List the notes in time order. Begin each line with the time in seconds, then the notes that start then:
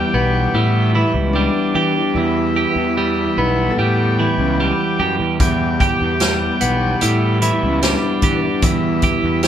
Already playing: E2 E3 G3 B3 G4
0.14 B1 B3
0.54 A2 G3 E4
0.95 E3 E4
1.14 C#2
1.33 G3 D4
1.75 E3 G4
2.15 E2 E4
2.56 G4
2.76 E2
2.97 G3 E4
3.38 B1 B3
3.70 A4
3.78 A2 G3 G4
4.19 E3
4.38 C#2
4.60 G3 G4
5.00 F#2 G4
5.20 E2
5.40 E2 G4, kick, closed hi-hat
5.80 G4, kick, closed hi-hat
6.01 E2
6.20 G3, snare, closed hi-hat
6.61 B1 B3, closed hi-hat
7.01 A2 G3 E4, closed hi-hat
7.42 E3 E4, closed hi-hat
7.63 C#2
7.83 G3 D4, snare, closed hi-hat
8.22 E3 G4, kick, closed hi-hat
8.62 E2 E4, kick, closed hi-hat
9.02 G4, kick, closed hi-hat
9.23 E2
9.43 G3 E4, snare, closed hi-hat